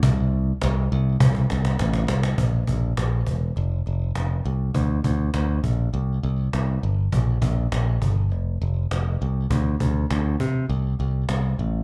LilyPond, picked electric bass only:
\new Staff \with { instrumentName = "Picked electric bass" } { \clef bass \time 4/4 \key c \mixolydian \tempo 4 = 101 c,4 c,8 c,8 c,8 c,8 a,,8 c,8 | bes,,8 bes,,8 bes,,8 e,,8 f,,8 f,,8 f,,8 c,8 | d,8 d,8 d,8 bes,,8 c,8 c,8 c,8 g,,8 | bes,,8 bes,,8 bes,,8 g,,8 f,,8 f,,8 f,,8 c,8 |
d,8 d,8 d,8 c8 c,8 c,8 c,8 a,,8 | }